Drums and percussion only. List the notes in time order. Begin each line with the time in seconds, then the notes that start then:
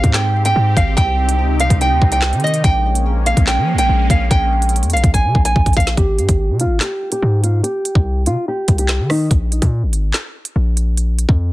0.04 kick, closed hi-hat
0.14 snare, clap, closed hi-hat
0.45 closed hi-hat
0.77 kick, closed hi-hat
0.97 kick, closed hi-hat
1.29 closed hi-hat
1.60 closed hi-hat
1.70 kick, closed hi-hat
1.81 closed hi-hat
2.02 kick
2.12 closed hi-hat
2.22 snare, clap
2.33 closed hi-hat
2.40 closed hi-hat
2.47 closed hi-hat
2.54 closed hi-hat
2.64 kick, closed hi-hat
2.95 closed hi-hat
3.26 closed hi-hat
3.37 kick, closed hi-hat
3.47 snare, clap, closed hi-hat
3.78 closed hi-hat
4.10 kick, closed hi-hat
4.31 kick, closed hi-hat
4.62 closed hi-hat
4.69 closed hi-hat
4.76 closed hi-hat
4.83 closed hi-hat
4.90 closed hi-hat
4.97 closed hi-hat
5.04 kick, closed hi-hat
5.14 kick, closed hi-hat
5.35 kick
5.45 closed hi-hat
5.56 kick
5.66 kick, closed hi-hat
5.73 kick, closed hi-hat
5.80 closed hi-hat
5.87 snare, closed hi-hat
5.97 kick, closed hi-hat
6.19 closed hi-hat
6.29 kick, closed hi-hat
6.60 closed hi-hat
6.80 snare, clap, closed hi-hat
7.12 closed hi-hat
7.44 closed hi-hat
7.64 closed hi-hat
7.85 closed hi-hat
7.95 kick
8.26 closed hi-hat
8.68 kick, closed hi-hat
8.78 closed hi-hat
8.89 snare, clap, closed hi-hat
9.10 cross-stick, open hi-hat
9.31 kick, closed hi-hat
9.52 closed hi-hat
9.62 kick, closed hi-hat
9.93 closed hi-hat
10.14 snare, clap, closed hi-hat
10.45 closed hi-hat
10.77 closed hi-hat
10.97 closed hi-hat
11.19 closed hi-hat
11.29 kick